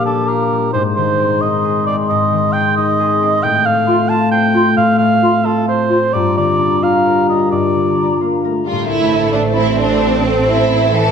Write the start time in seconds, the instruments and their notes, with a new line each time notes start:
Already playing: harp A#2 F3 G3 F4, french horn section A#3, clarinet G4, flute section D6
0.06 harp D4, cor anglais A4
0.28 harp F4, cor anglais A#4
0.51 harp G3
0.73 harp G#2, french horn section G#3, clarinet D#4, cor anglais C5, flute section C6
0.95 harp D#3, cor anglais C5
1.20 harp C4
1.41 harp D#4, cor anglais D#5
1.65 harp G#4
1.86 harp C4, cor anglais D5
2.08 harp G#2, cor anglais D#5
2.33 harp D#3
2.53 harp C4, cor anglais G5
2.77 harp D#4, cor anglais D#5
3.00 harp G#4
3.23 harp C4
3.43 harp A2, french horn section A3, cor anglais G5
3.66 harp A3, cor anglais F5
3.87 harp C4, clarinet F4, flute section C6
4.09 harp F4, cor anglais A5
4.31 harp C5, cor anglais G5
4.54 harp C4, clarinet F4, flute section C6
4.77 harp A2, cor anglais F5
4.98 harp A3, cor anglais F5
5.23 harp C4, clarinet F4, flute section C6
5.45 harp F4, cor anglais A4
5.68 cor anglais C5, harp C5
5.89 harp C4, clarinet F4, flute section C6
6.12 harp G2, french horn section G3, clarinet F4, cor anglais D5, flute section A#5
6.37 harp D3, cor anglais D5
6.59 harp D4
6.82 clarinet F4, harp F4, cor anglais F5, flute section A#5
7.06 harp A#4
7.28 harp D4, cor anglais D#5
7.49 harp G2, clarinet F4, cor anglais D5, flute section A#5
7.75 harp D3
7.98 harp D4
8.20 french horn section A#3, harp F4
8.44 french horn section A3, harp A#4
8.64 french horn section G3, harp D4, violin section F4
8.72 harp A2
8.76 harp A3
8.81 harp C4
8.85 double bass section A1, viola section A3 A4, violin section E4 C5, harp A4
8.90 cello section A3
9.32 violin section D4
9.56 cello section C4, violin section E4
9.81 violin section D4
10.25 violin section C4
10.48 violin section E4
10.94 cello section E3, violin section A4